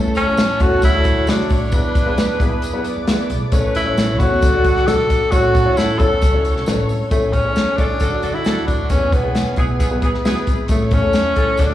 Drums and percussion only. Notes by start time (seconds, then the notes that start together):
0.15 closed hi-hat, tambourine
0.37 snare, closed hi-hat, tambourine
0.60 kick, closed hi-hat, tambourine
0.82 kick, closed hi-hat, tambourine
1.04 kick, closed hi-hat, tambourine
1.27 snare, closed hi-hat, tambourine
1.40 snare
1.50 kick, open hi-hat, tambourine
1.72 kick, closed hi-hat, tambourine
1.95 kick, closed hi-hat, tambourine
2.18 snare, closed hi-hat, tambourine
2.40 kick, closed hi-hat, tambourine
2.62 closed hi-hat, tambourine
2.84 closed hi-hat, tambourine
3.07 snare, closed hi-hat, tambourine
3.19 snare
3.30 closed hi-hat, tambourine
3.52 kick, closed hi-hat, tambourine
3.75 closed hi-hat, tambourine
3.97 snare, closed hi-hat, tambourine
4.20 kick, closed hi-hat, tambourine
4.42 kick, closed hi-hat, tambourine
4.64 kick, closed hi-hat, tambourine
4.76 snare
4.88 snare, closed hi-hat, tambourine
4.99 snare
5.10 kick, closed hi-hat, tambourine
5.32 kick, closed hi-hat, tambourine
5.54 kick, closed hi-hat, tambourine
5.77 snare, closed hi-hat, tambourine
5.99 kick, closed hi-hat, tambourine
6.22 kick, closed hi-hat, tambourine
6.45 closed hi-hat, tambourine
6.56 snare
6.66 snare, closed hi-hat, tambourine
6.89 open hi-hat, tambourine
7.11 kick, closed hi-hat, tambourine
7.33 kick, closed hi-hat, tambourine
7.56 snare, closed hi-hat, tambourine
7.78 kick, closed hi-hat, tambourine
8.00 kick, closed hi-hat, tambourine
8.23 closed hi-hat, tambourine
8.45 snare, closed hi-hat, tambourine
8.58 snare
8.68 kick, closed hi-hat, tambourine
8.89 kick, closed hi-hat, tambourine
9.12 kick, closed hi-hat, tambourine
9.35 snare, closed hi-hat, tambourine
9.56 kick, closed hi-hat, tambourine
9.80 kick, closed hi-hat, tambourine
10.02 kick, closed hi-hat, tambourine
10.14 snare
10.25 snare, closed hi-hat, tambourine
10.36 snare
10.47 kick, closed hi-hat, tambourine
10.68 kick, closed hi-hat, tambourine
10.91 kick, closed hi-hat, tambourine
11.13 snare, closed hi-hat, tambourine
11.36 kick, closed hi-hat, tambourine
11.57 kick, closed hi-hat, tambourine